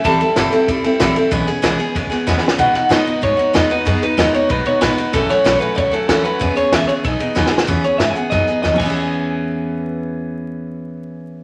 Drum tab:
CC |------------------------|------------------------|------------------------|------------------------|
RD |x--x--x--x--x--x--x--x--|x--x--x--x--x--x--------|x--x--x--x--x--x--x--x--|x--x--x--x--x--x--x--x--|
HH |------------------------|------------------------|------------------------|------------------------|
SD |o-----o-----------o-----|------o--------o--o-o-o-|---o--o-----------o-----|------o-----------o-----|
T2 |------------------------|------------------------|------------------------|------------------------|
BD |o-----------o-----o-----|o-----------o-----o-----|o-----------o-----o-----|o-----------o-----o-----|

CC |------------------------|------------------------|---------------------x--|------------------------|
RD |x--x--x--x--x--x--x--x--|x--x--x--x--x--x--------|------------------------|------------------------|
HH |------------------------|------------------------|x--x--x--x--x--x--------|------------------------|
SD |o--o--o-----------o-----|------o-----------o-o-o-|------o-----o-----o-----|------------------------|
T2 |------------------------|------------------------|--------------------o---|------------------------|
BD |o-----------o-----o-----|o-----------o-----o-----|o-----------o--------o--|------------------------|

CC |------------------------|
RD |------------------------|
HH |------------------------|
SD |------------------------|
T2 |------------------------|
BD |------------------------|